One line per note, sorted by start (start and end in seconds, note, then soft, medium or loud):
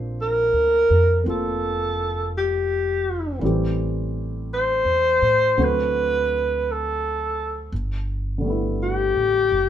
0.00 0.49 A#1 medium
0.00 3.39 F3 soft
0.00 1.22 A#3 soft
0.00 1.24 C4 soft
0.00 3.43 D4 soft
0.00 3.43 A4 soft
0.00 3.44 C5 soft
0.21 1.24 A#4 medium
0.53 0.87 D2 soft
0.90 1.24 F2 soft
1.24 3.38 F1 medium
1.24 3.41 A#3 soft
1.24 3.41 C4 soft
1.24 3.42 F4 soft
1.30 2.32 A4 medium
2.38 3.39 G4 medium
3.39 4.81 A1 medium
3.39 5.56 E3 soft
3.39 5.57 G3 soft
3.39 5.57 A3 soft
3.44 5.57 C4 soft
3.44 5.58 G4 soft
4.54 5.65 C5 medium
4.85 5.18 E2 soft
5.22 5.55 A2 soft
5.57 7.68 D2 medium
5.57 7.72 D3 soft
5.57 7.72 F#3 soft
5.57 7.72 A3 soft
5.57 7.72 C4 soft
5.57 7.73 F#4 soft
5.63 6.73 B4 medium
6.72 7.75 A4 medium
7.72 9.11 G1 medium
8.38 9.69 D3 soft
8.38 9.69 G3 soft
8.45 9.69 A3 soft
8.45 9.69 B3 soft
8.50 9.69 E4 soft
8.83 9.69 G4 medium
9.16 9.49 A1 soft
9.52 9.69 F#1 soft